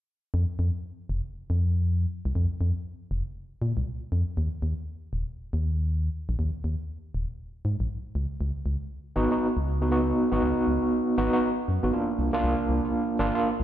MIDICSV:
0, 0, Header, 1, 3, 480
1, 0, Start_track
1, 0, Tempo, 504202
1, 322, Time_signature, 4, 2, 24, 8
1, 12983, End_track
2, 0, Start_track
2, 0, Title_t, "Tine electric piano"
2, 0, Program_c, 0, 4
2, 8718, Note_on_c, 0, 59, 92
2, 8722, Note_on_c, 0, 63, 83
2, 8725, Note_on_c, 0, 66, 99
2, 8844, Note_off_c, 0, 59, 0
2, 8846, Note_off_c, 0, 63, 0
2, 8847, Note_off_c, 0, 66, 0
2, 8864, Note_on_c, 0, 59, 69
2, 8868, Note_on_c, 0, 63, 63
2, 8871, Note_on_c, 0, 66, 76
2, 9008, Note_off_c, 0, 59, 0
2, 9010, Note_off_c, 0, 63, 0
2, 9012, Note_off_c, 0, 66, 0
2, 9344, Note_on_c, 0, 59, 75
2, 9347, Note_on_c, 0, 63, 66
2, 9351, Note_on_c, 0, 66, 79
2, 9418, Note_off_c, 0, 59, 0
2, 9419, Note_off_c, 0, 63, 0
2, 9421, Note_off_c, 0, 66, 0
2, 9438, Note_on_c, 0, 59, 74
2, 9441, Note_on_c, 0, 63, 63
2, 9444, Note_on_c, 0, 66, 80
2, 9791, Note_off_c, 0, 59, 0
2, 9792, Note_off_c, 0, 63, 0
2, 9794, Note_off_c, 0, 66, 0
2, 9821, Note_on_c, 0, 59, 86
2, 9827, Note_on_c, 0, 63, 82
2, 9834, Note_on_c, 0, 66, 96
2, 10616, Note_off_c, 0, 59, 0
2, 10619, Note_off_c, 0, 63, 0
2, 10623, Note_off_c, 0, 66, 0
2, 10638, Note_on_c, 0, 59, 90
2, 10641, Note_on_c, 0, 63, 81
2, 10644, Note_on_c, 0, 66, 100
2, 10764, Note_off_c, 0, 59, 0
2, 10765, Note_off_c, 0, 63, 0
2, 10767, Note_off_c, 0, 66, 0
2, 10783, Note_on_c, 0, 59, 70
2, 10786, Note_on_c, 0, 63, 65
2, 10790, Note_on_c, 0, 66, 77
2, 10928, Note_off_c, 0, 59, 0
2, 10929, Note_off_c, 0, 63, 0
2, 10931, Note_off_c, 0, 66, 0
2, 11262, Note_on_c, 0, 59, 76
2, 11266, Note_on_c, 0, 63, 65
2, 11269, Note_on_c, 0, 66, 78
2, 11337, Note_off_c, 0, 59, 0
2, 11339, Note_off_c, 0, 63, 0
2, 11340, Note_off_c, 0, 66, 0
2, 11357, Note_on_c, 0, 58, 71
2, 11361, Note_on_c, 0, 62, 68
2, 11363, Note_on_c, 0, 65, 76
2, 11710, Note_off_c, 0, 58, 0
2, 11712, Note_off_c, 0, 62, 0
2, 11713, Note_off_c, 0, 65, 0
2, 11739, Note_on_c, 0, 58, 89
2, 11746, Note_on_c, 0, 62, 78
2, 11752, Note_on_c, 0, 65, 100
2, 12535, Note_off_c, 0, 58, 0
2, 12538, Note_off_c, 0, 62, 0
2, 12542, Note_off_c, 0, 65, 0
2, 12557, Note_on_c, 0, 58, 87
2, 12561, Note_on_c, 0, 62, 84
2, 12564, Note_on_c, 0, 65, 98
2, 12683, Note_off_c, 0, 58, 0
2, 12685, Note_off_c, 0, 62, 0
2, 12687, Note_off_c, 0, 65, 0
2, 12704, Note_on_c, 0, 58, 72
2, 12707, Note_on_c, 0, 62, 64
2, 12710, Note_on_c, 0, 65, 75
2, 12848, Note_off_c, 0, 58, 0
2, 12850, Note_off_c, 0, 62, 0
2, 12851, Note_off_c, 0, 65, 0
2, 12983, End_track
3, 0, Start_track
3, 0, Title_t, "FM bass"
3, 0, Program_c, 1, 39
3, 321, Note_on_c, 1, 41, 97
3, 429, Note_off_c, 1, 41, 0
3, 562, Note_on_c, 1, 41, 88
3, 669, Note_off_c, 1, 41, 0
3, 1042, Note_on_c, 1, 29, 82
3, 1149, Note_off_c, 1, 29, 0
3, 1427, Note_on_c, 1, 41, 90
3, 1962, Note_off_c, 1, 41, 0
3, 2146, Note_on_c, 1, 36, 88
3, 2216, Note_off_c, 1, 36, 0
3, 2241, Note_on_c, 1, 41, 96
3, 2349, Note_off_c, 1, 41, 0
3, 2481, Note_on_c, 1, 41, 88
3, 2589, Note_off_c, 1, 41, 0
3, 2961, Note_on_c, 1, 29, 84
3, 3069, Note_off_c, 1, 29, 0
3, 3442, Note_on_c, 1, 46, 78
3, 3549, Note_off_c, 1, 46, 0
3, 3588, Note_on_c, 1, 36, 77
3, 3657, Note_off_c, 1, 36, 0
3, 3922, Note_on_c, 1, 41, 87
3, 4030, Note_off_c, 1, 41, 0
3, 4163, Note_on_c, 1, 39, 93
3, 4270, Note_off_c, 1, 39, 0
3, 4402, Note_on_c, 1, 39, 90
3, 4509, Note_off_c, 1, 39, 0
3, 4882, Note_on_c, 1, 27, 81
3, 4990, Note_off_c, 1, 27, 0
3, 5267, Note_on_c, 1, 39, 94
3, 5802, Note_off_c, 1, 39, 0
3, 5987, Note_on_c, 1, 34, 89
3, 6057, Note_off_c, 1, 34, 0
3, 6083, Note_on_c, 1, 39, 98
3, 6190, Note_off_c, 1, 39, 0
3, 6323, Note_on_c, 1, 39, 89
3, 6430, Note_off_c, 1, 39, 0
3, 6802, Note_on_c, 1, 27, 82
3, 6910, Note_off_c, 1, 27, 0
3, 7282, Note_on_c, 1, 44, 73
3, 7389, Note_off_c, 1, 44, 0
3, 7427, Note_on_c, 1, 34, 78
3, 7497, Note_off_c, 1, 34, 0
3, 7761, Note_on_c, 1, 37, 87
3, 7869, Note_off_c, 1, 37, 0
3, 8002, Note_on_c, 1, 37, 99
3, 8110, Note_off_c, 1, 37, 0
3, 8241, Note_on_c, 1, 37, 87
3, 8349, Note_off_c, 1, 37, 0
3, 8723, Note_on_c, 1, 32, 85
3, 8830, Note_off_c, 1, 32, 0
3, 9108, Note_on_c, 1, 37, 90
3, 9643, Note_off_c, 1, 37, 0
3, 9828, Note_on_c, 1, 32, 88
3, 9897, Note_off_c, 1, 32, 0
3, 9923, Note_on_c, 1, 37, 96
3, 10030, Note_off_c, 1, 37, 0
3, 10162, Note_on_c, 1, 37, 88
3, 10270, Note_off_c, 1, 37, 0
3, 10643, Note_on_c, 1, 32, 84
3, 10750, Note_off_c, 1, 32, 0
3, 11123, Note_on_c, 1, 42, 78
3, 11230, Note_off_c, 1, 42, 0
3, 11268, Note_on_c, 1, 32, 78
3, 11338, Note_off_c, 1, 32, 0
3, 11602, Note_on_c, 1, 36, 88
3, 11710, Note_off_c, 1, 36, 0
3, 11842, Note_on_c, 1, 36, 96
3, 11949, Note_off_c, 1, 36, 0
3, 12082, Note_on_c, 1, 36, 86
3, 12189, Note_off_c, 1, 36, 0
3, 12562, Note_on_c, 1, 31, 83
3, 12669, Note_off_c, 1, 31, 0
3, 12948, Note_on_c, 1, 36, 95
3, 12983, Note_off_c, 1, 36, 0
3, 12983, End_track
0, 0, End_of_file